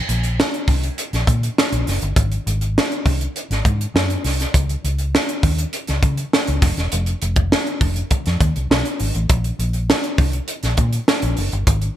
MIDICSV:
0, 0, Header, 1, 3, 480
1, 0, Start_track
1, 0, Tempo, 594648
1, 1745, Time_signature, 4, 2, 24, 8
1, 9661, End_track
2, 0, Start_track
2, 0, Title_t, "Fingered electric bass"
2, 0, Program_c, 0, 33
2, 70, Note_on_c, 0, 34, 89
2, 315, Note_off_c, 0, 34, 0
2, 548, Note_on_c, 0, 36, 81
2, 711, Note_off_c, 0, 36, 0
2, 913, Note_on_c, 0, 34, 81
2, 992, Note_off_c, 0, 34, 0
2, 1030, Note_on_c, 0, 46, 88
2, 1193, Note_off_c, 0, 46, 0
2, 1391, Note_on_c, 0, 34, 82
2, 1471, Note_off_c, 0, 34, 0
2, 1513, Note_on_c, 0, 30, 82
2, 1592, Note_off_c, 0, 30, 0
2, 1632, Note_on_c, 0, 31, 74
2, 1712, Note_off_c, 0, 31, 0
2, 1747, Note_on_c, 0, 32, 89
2, 1910, Note_off_c, 0, 32, 0
2, 1990, Note_on_c, 0, 32, 86
2, 2235, Note_off_c, 0, 32, 0
2, 2466, Note_on_c, 0, 36, 80
2, 2630, Note_off_c, 0, 36, 0
2, 2828, Note_on_c, 0, 32, 82
2, 2909, Note_off_c, 0, 32, 0
2, 2946, Note_on_c, 0, 44, 91
2, 3110, Note_off_c, 0, 44, 0
2, 3185, Note_on_c, 0, 42, 86
2, 3349, Note_off_c, 0, 42, 0
2, 3426, Note_on_c, 0, 36, 80
2, 3590, Note_off_c, 0, 36, 0
2, 3668, Note_on_c, 0, 37, 97
2, 3831, Note_off_c, 0, 37, 0
2, 3909, Note_on_c, 0, 37, 85
2, 4154, Note_off_c, 0, 37, 0
2, 4386, Note_on_c, 0, 39, 86
2, 4549, Note_off_c, 0, 39, 0
2, 4754, Note_on_c, 0, 37, 90
2, 4832, Note_off_c, 0, 37, 0
2, 4867, Note_on_c, 0, 49, 82
2, 5030, Note_off_c, 0, 49, 0
2, 5232, Note_on_c, 0, 37, 83
2, 5311, Note_off_c, 0, 37, 0
2, 5346, Note_on_c, 0, 29, 88
2, 5427, Note_off_c, 0, 29, 0
2, 5468, Note_on_c, 0, 28, 83
2, 5549, Note_off_c, 0, 28, 0
2, 5590, Note_on_c, 0, 29, 102
2, 5752, Note_off_c, 0, 29, 0
2, 5829, Note_on_c, 0, 29, 83
2, 6074, Note_off_c, 0, 29, 0
2, 6304, Note_on_c, 0, 29, 80
2, 6468, Note_off_c, 0, 29, 0
2, 6672, Note_on_c, 0, 41, 75
2, 6751, Note_off_c, 0, 41, 0
2, 6785, Note_on_c, 0, 39, 84
2, 6866, Note_off_c, 0, 39, 0
2, 6913, Note_on_c, 0, 36, 76
2, 6991, Note_off_c, 0, 36, 0
2, 7027, Note_on_c, 0, 35, 92
2, 7108, Note_off_c, 0, 35, 0
2, 7266, Note_on_c, 0, 32, 78
2, 7347, Note_off_c, 0, 32, 0
2, 7385, Note_on_c, 0, 33, 86
2, 7466, Note_off_c, 0, 33, 0
2, 7504, Note_on_c, 0, 34, 90
2, 7668, Note_off_c, 0, 34, 0
2, 7741, Note_on_c, 0, 34, 86
2, 7988, Note_off_c, 0, 34, 0
2, 8219, Note_on_c, 0, 36, 78
2, 8385, Note_off_c, 0, 36, 0
2, 8584, Note_on_c, 0, 34, 77
2, 8665, Note_off_c, 0, 34, 0
2, 8698, Note_on_c, 0, 46, 91
2, 8864, Note_off_c, 0, 46, 0
2, 9062, Note_on_c, 0, 34, 84
2, 9144, Note_off_c, 0, 34, 0
2, 9187, Note_on_c, 0, 30, 78
2, 9267, Note_off_c, 0, 30, 0
2, 9305, Note_on_c, 0, 31, 78
2, 9386, Note_off_c, 0, 31, 0
2, 9421, Note_on_c, 0, 32, 84
2, 9586, Note_off_c, 0, 32, 0
2, 9661, End_track
3, 0, Start_track
3, 0, Title_t, "Drums"
3, 73, Note_on_c, 9, 42, 64
3, 154, Note_off_c, 9, 42, 0
3, 190, Note_on_c, 9, 42, 45
3, 270, Note_off_c, 9, 42, 0
3, 320, Note_on_c, 9, 38, 110
3, 401, Note_off_c, 9, 38, 0
3, 436, Note_on_c, 9, 42, 43
3, 516, Note_off_c, 9, 42, 0
3, 547, Note_on_c, 9, 36, 86
3, 550, Note_on_c, 9, 46, 70
3, 627, Note_off_c, 9, 36, 0
3, 631, Note_off_c, 9, 46, 0
3, 674, Note_on_c, 9, 42, 55
3, 754, Note_off_c, 9, 42, 0
3, 791, Note_on_c, 9, 42, 78
3, 872, Note_off_c, 9, 42, 0
3, 913, Note_on_c, 9, 42, 47
3, 921, Note_on_c, 9, 38, 33
3, 994, Note_off_c, 9, 42, 0
3, 1002, Note_off_c, 9, 38, 0
3, 1028, Note_on_c, 9, 36, 80
3, 1035, Note_on_c, 9, 42, 56
3, 1108, Note_off_c, 9, 36, 0
3, 1115, Note_off_c, 9, 42, 0
3, 1157, Note_on_c, 9, 42, 51
3, 1237, Note_off_c, 9, 42, 0
3, 1278, Note_on_c, 9, 38, 99
3, 1359, Note_off_c, 9, 38, 0
3, 1392, Note_on_c, 9, 42, 52
3, 1473, Note_off_c, 9, 42, 0
3, 1511, Note_on_c, 9, 46, 65
3, 1519, Note_on_c, 9, 38, 30
3, 1591, Note_off_c, 9, 46, 0
3, 1599, Note_off_c, 9, 38, 0
3, 1628, Note_on_c, 9, 42, 51
3, 1708, Note_off_c, 9, 42, 0
3, 1747, Note_on_c, 9, 36, 101
3, 1749, Note_on_c, 9, 42, 95
3, 1827, Note_off_c, 9, 36, 0
3, 1830, Note_off_c, 9, 42, 0
3, 1869, Note_on_c, 9, 42, 48
3, 1950, Note_off_c, 9, 42, 0
3, 1994, Note_on_c, 9, 42, 61
3, 2075, Note_off_c, 9, 42, 0
3, 2109, Note_on_c, 9, 42, 45
3, 2189, Note_off_c, 9, 42, 0
3, 2243, Note_on_c, 9, 38, 113
3, 2323, Note_off_c, 9, 38, 0
3, 2355, Note_on_c, 9, 42, 45
3, 2436, Note_off_c, 9, 42, 0
3, 2467, Note_on_c, 9, 36, 84
3, 2472, Note_on_c, 9, 46, 70
3, 2548, Note_off_c, 9, 36, 0
3, 2553, Note_off_c, 9, 46, 0
3, 2592, Note_on_c, 9, 42, 53
3, 2672, Note_off_c, 9, 42, 0
3, 2711, Note_on_c, 9, 42, 77
3, 2792, Note_off_c, 9, 42, 0
3, 2832, Note_on_c, 9, 42, 47
3, 2840, Note_on_c, 9, 38, 36
3, 2913, Note_off_c, 9, 42, 0
3, 2920, Note_off_c, 9, 38, 0
3, 2947, Note_on_c, 9, 36, 82
3, 2953, Note_on_c, 9, 42, 59
3, 3027, Note_off_c, 9, 36, 0
3, 3033, Note_off_c, 9, 42, 0
3, 3075, Note_on_c, 9, 42, 52
3, 3156, Note_off_c, 9, 42, 0
3, 3194, Note_on_c, 9, 38, 96
3, 3275, Note_off_c, 9, 38, 0
3, 3310, Note_on_c, 9, 42, 54
3, 3391, Note_off_c, 9, 42, 0
3, 3426, Note_on_c, 9, 46, 69
3, 3434, Note_on_c, 9, 38, 31
3, 3507, Note_off_c, 9, 46, 0
3, 3515, Note_off_c, 9, 38, 0
3, 3550, Note_on_c, 9, 42, 47
3, 3557, Note_on_c, 9, 38, 30
3, 3630, Note_off_c, 9, 42, 0
3, 3638, Note_off_c, 9, 38, 0
3, 3666, Note_on_c, 9, 36, 94
3, 3668, Note_on_c, 9, 42, 94
3, 3747, Note_off_c, 9, 36, 0
3, 3749, Note_off_c, 9, 42, 0
3, 3789, Note_on_c, 9, 42, 47
3, 3870, Note_off_c, 9, 42, 0
3, 3912, Note_on_c, 9, 42, 65
3, 3992, Note_off_c, 9, 42, 0
3, 4024, Note_on_c, 9, 42, 44
3, 4105, Note_off_c, 9, 42, 0
3, 4155, Note_on_c, 9, 38, 108
3, 4236, Note_off_c, 9, 38, 0
3, 4269, Note_on_c, 9, 42, 48
3, 4349, Note_off_c, 9, 42, 0
3, 4385, Note_on_c, 9, 36, 90
3, 4386, Note_on_c, 9, 46, 66
3, 4465, Note_off_c, 9, 36, 0
3, 4466, Note_off_c, 9, 46, 0
3, 4508, Note_on_c, 9, 42, 57
3, 4589, Note_off_c, 9, 42, 0
3, 4625, Note_on_c, 9, 42, 81
3, 4705, Note_off_c, 9, 42, 0
3, 4742, Note_on_c, 9, 42, 47
3, 4749, Note_on_c, 9, 38, 36
3, 4822, Note_off_c, 9, 42, 0
3, 4830, Note_off_c, 9, 38, 0
3, 4864, Note_on_c, 9, 36, 84
3, 4865, Note_on_c, 9, 42, 59
3, 4945, Note_off_c, 9, 36, 0
3, 4945, Note_off_c, 9, 42, 0
3, 4984, Note_on_c, 9, 42, 52
3, 5065, Note_off_c, 9, 42, 0
3, 5113, Note_on_c, 9, 38, 93
3, 5194, Note_off_c, 9, 38, 0
3, 5225, Note_on_c, 9, 42, 53
3, 5306, Note_off_c, 9, 42, 0
3, 5344, Note_on_c, 9, 46, 66
3, 5345, Note_on_c, 9, 36, 99
3, 5352, Note_on_c, 9, 38, 29
3, 5424, Note_off_c, 9, 46, 0
3, 5425, Note_off_c, 9, 36, 0
3, 5432, Note_off_c, 9, 38, 0
3, 5466, Note_on_c, 9, 42, 50
3, 5474, Note_on_c, 9, 38, 32
3, 5547, Note_off_c, 9, 42, 0
3, 5555, Note_off_c, 9, 38, 0
3, 5584, Note_on_c, 9, 42, 86
3, 5665, Note_off_c, 9, 42, 0
3, 5701, Note_on_c, 9, 42, 50
3, 5782, Note_off_c, 9, 42, 0
3, 5825, Note_on_c, 9, 42, 61
3, 5905, Note_off_c, 9, 42, 0
3, 5940, Note_on_c, 9, 42, 44
3, 5944, Note_on_c, 9, 36, 76
3, 6021, Note_off_c, 9, 42, 0
3, 6025, Note_off_c, 9, 36, 0
3, 6072, Note_on_c, 9, 38, 110
3, 6152, Note_off_c, 9, 38, 0
3, 6188, Note_on_c, 9, 42, 43
3, 6269, Note_off_c, 9, 42, 0
3, 6304, Note_on_c, 9, 36, 88
3, 6304, Note_on_c, 9, 46, 68
3, 6384, Note_off_c, 9, 36, 0
3, 6385, Note_off_c, 9, 46, 0
3, 6424, Note_on_c, 9, 42, 54
3, 6505, Note_off_c, 9, 42, 0
3, 6543, Note_on_c, 9, 42, 79
3, 6546, Note_on_c, 9, 36, 83
3, 6624, Note_off_c, 9, 42, 0
3, 6627, Note_off_c, 9, 36, 0
3, 6665, Note_on_c, 9, 42, 46
3, 6673, Note_on_c, 9, 38, 38
3, 6746, Note_off_c, 9, 42, 0
3, 6753, Note_off_c, 9, 38, 0
3, 6784, Note_on_c, 9, 36, 87
3, 6787, Note_on_c, 9, 42, 57
3, 6865, Note_off_c, 9, 36, 0
3, 6867, Note_off_c, 9, 42, 0
3, 6908, Note_on_c, 9, 42, 47
3, 6989, Note_off_c, 9, 42, 0
3, 7032, Note_on_c, 9, 38, 99
3, 7113, Note_off_c, 9, 38, 0
3, 7147, Note_on_c, 9, 42, 52
3, 7228, Note_off_c, 9, 42, 0
3, 7261, Note_on_c, 9, 46, 69
3, 7342, Note_off_c, 9, 46, 0
3, 7383, Note_on_c, 9, 42, 51
3, 7464, Note_off_c, 9, 42, 0
3, 7502, Note_on_c, 9, 42, 90
3, 7504, Note_on_c, 9, 36, 105
3, 7583, Note_off_c, 9, 42, 0
3, 7584, Note_off_c, 9, 36, 0
3, 7623, Note_on_c, 9, 42, 49
3, 7703, Note_off_c, 9, 42, 0
3, 7745, Note_on_c, 9, 42, 62
3, 7826, Note_off_c, 9, 42, 0
3, 7856, Note_on_c, 9, 42, 46
3, 7937, Note_off_c, 9, 42, 0
3, 7989, Note_on_c, 9, 38, 111
3, 8070, Note_off_c, 9, 38, 0
3, 8102, Note_on_c, 9, 42, 45
3, 8183, Note_off_c, 9, 42, 0
3, 8218, Note_on_c, 9, 46, 73
3, 8220, Note_on_c, 9, 36, 96
3, 8299, Note_off_c, 9, 46, 0
3, 8301, Note_off_c, 9, 36, 0
3, 8340, Note_on_c, 9, 42, 58
3, 8421, Note_off_c, 9, 42, 0
3, 8457, Note_on_c, 9, 42, 76
3, 8538, Note_off_c, 9, 42, 0
3, 8578, Note_on_c, 9, 42, 45
3, 8586, Note_on_c, 9, 38, 37
3, 8659, Note_off_c, 9, 42, 0
3, 8667, Note_off_c, 9, 38, 0
3, 8695, Note_on_c, 9, 42, 61
3, 8699, Note_on_c, 9, 36, 83
3, 8776, Note_off_c, 9, 42, 0
3, 8780, Note_off_c, 9, 36, 0
3, 8819, Note_on_c, 9, 42, 51
3, 8900, Note_off_c, 9, 42, 0
3, 8943, Note_on_c, 9, 38, 107
3, 9024, Note_off_c, 9, 38, 0
3, 9058, Note_on_c, 9, 42, 52
3, 9139, Note_off_c, 9, 42, 0
3, 9176, Note_on_c, 9, 46, 63
3, 9256, Note_off_c, 9, 46, 0
3, 9300, Note_on_c, 9, 42, 50
3, 9381, Note_off_c, 9, 42, 0
3, 9419, Note_on_c, 9, 42, 92
3, 9420, Note_on_c, 9, 36, 99
3, 9500, Note_off_c, 9, 42, 0
3, 9501, Note_off_c, 9, 36, 0
3, 9537, Note_on_c, 9, 42, 45
3, 9618, Note_off_c, 9, 42, 0
3, 9661, End_track
0, 0, End_of_file